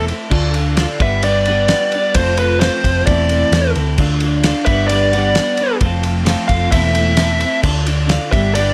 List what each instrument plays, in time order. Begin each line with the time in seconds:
Already playing: picked electric bass E1
0.07 clean electric guitar A3 C4 E4 A4, ride
0.30 picked electric bass D2, clean electric guitar D3 D4 F4 A4, kick, crash
0.54 clean electric guitar D4 F4 A4, ride
0.76 clean electric guitar D3 D4 F4 A4, snare, ride
1.00 picked electric bass G1, clean electric guitar G3 B3 D4 B4, lead electric guitar E5, kick, ride
1.22 clean electric guitar G3 B3 D4 B4, lead electric guitar D5, ride
1.45 clean electric guitar G3 B3 D4 B4, ride
1.68 clean electric guitar G3 B3 D4 B4, snare, ride
1.92 clean electric guitar B3 D4 B4, ride
2.15 picked electric bass F1, clean electric guitar F3 A3 C4 F4 A4, lead electric guitar C5, kick, ride
2.37 clean electric guitar F4 A4, lead electric guitar B4, ride
2.42 clean electric guitar C4
2.60 clean electric guitar F3 A3 C4 F4 A4, lead electric guitar C5, snare, ride
2.84 picked electric bass F1, clean electric guitar C4 F4 A4, kick, ride
3.06 picked electric bass E1, clean electric guitar E2 E3 A3 C4 E4 A4, lead electric guitar D5, kick, ride
3.29 clean electric guitar E2 E3 A3 C4 E4 A4, ride
3.52 picked electric bass E2, clean electric guitar A3 C4 E4 A4, snare, ride
3.75 picked electric bass D2, clean electric guitar A3 C4 E4 A4, ride
3.98 picked electric bass D2, clean electric guitar D3 D4 F4 A4, kick, crash
4.20 clean electric guitar F4 A4, ride
4.24 clean electric guitar D4
4.43 clean electric guitar D3 D4 F4 A4, snare, ride
4.66 picked electric bass G1, clean electric guitar G3 B3 D4 B4, lead electric guitar E5, kick, ride
4.88 clean electric guitar G3 B3 D4, lead electric guitar D5, ride
4.92 clean electric guitar B4
5.12 clean electric guitar G3 B3 D4 B4, ride
5.34 clean electric guitar G3 B3 D4 B4, snare, ride
5.57 clean electric guitar B3 D4 B4, ride
5.81 picked electric bass F1, clean electric guitar F3 A3 C4 F4 A4, kick, ride
6.02 clean electric guitar C4 F4 A4, ride
6.24 clean electric guitar F3 A3 C4 F4 A4, snare, ride
6.48 picked electric bass F1, clean electric guitar C4 F4 A4, lead electric guitar F5, kick, ride
6.71 picked electric bass E1, clean electric guitar E2 E3 A3 C4 E4 A4, lead electric guitar E5, kick, ride
6.94 clean electric guitar E2 E3 A3 C4 E4 A4, ride
7.16 clean electric guitar A3 C4 E4 A4, snare, ride
7.39 clean electric guitar A3 C4 E4 A4, ride
7.62 picked electric bass D2, clean electric guitar D3 D4 F4 A4, kick, crash
7.84 clean electric guitar D4 F4 A4, ride
8.07 clean electric guitar D3 D4 F4 A4, snare, ride
8.31 picked electric bass G1, clean electric guitar G2 D3 G3 B3 D4 G4, lead electric guitar E5, kick, ride
8.54 clean electric guitar G3 B3 D4 G4, lead electric guitar D5, ride